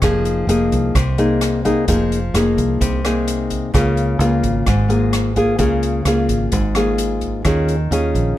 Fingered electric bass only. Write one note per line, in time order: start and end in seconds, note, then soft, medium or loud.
0.02 0.45 F1 medium
0.47 0.69 F1 medium
0.72 0.94 C2 medium
0.95 1.84 C2 medium
1.88 2.31 F1 medium
2.34 2.55 F1 medium
2.57 2.79 C2 medium
2.81 3.69 C2 medium
3.74 4.17 C#2 loud
4.19 4.41 C#2 medium
4.43 4.64 G#1 medium
4.66 5.55 G#1 medium
5.59 6.02 C#2 medium
6.05 6.27 C#2 medium
6.28 6.50 G#1 medium
6.52 7.41 G#1 medium
7.45 7.88 D#2 medium
7.91 8.12 D#2 medium
8.15 8.36 A#1 medium